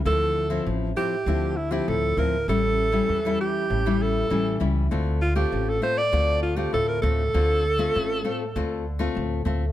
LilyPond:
<<
  \new Staff \with { instrumentName = "Alto saxophone" } { \time 4/4 \key d \minor \tempo 4 = 99 a'4 r8 g'4 e'16 g'16 a'8 bes'8 | a'4. g'4 a'4 r8 | r8 f'16 g'8 a'16 c''16 d''8. f'16 g'16 a'16 bes'16 a'8~ | a'2. r4 | }
  \new Staff \with { instrumentName = "Nylon-string guitar" } { \time 4/4 \key d \minor << { <f c' e'>8. <f c' e'>8. <f c' e'>16 r16 <f c' e'>8 r16 <f c' e'>8. <f c' e'>16 r16 | <g cis' e'>8. <g cis' e'>8 <g cis' e'>4 <g cis' e'>8. <g cis' e'>8 <g cis' e'>8 | <a c' f'>8 r16 <a c' f'>8. <a c' f'>16 r16 <a c' f'>8. <a c' f'>8. <a c' f'>16 r16 | <a c' f'>8 r16 <a c' f'>8. <a c' f'>16 r16 <a c' f'>8 r16 <a c' f'>8. <a c' f'>16 r16 | } \\ { d4 a,4 d4 a,4 | a,4 e4 a,4 e4 | d4 a,4 d4 a,4 | d4 a,4 d4 a,4 | } >> }
  \new Staff \with { instrumentName = "Upright bass" } { \clef bass \time 4/4 \key d \minor d,4 a,,8 r8 d,4 d,8 d,8 | a,,4 e,8 r8 a,,4 a,,8 cis,8 | d,4 a,,8 r8 d,4 d,8 d,8 | d,4 a,,8 r8 d,4 d,8 d,8 | }
>>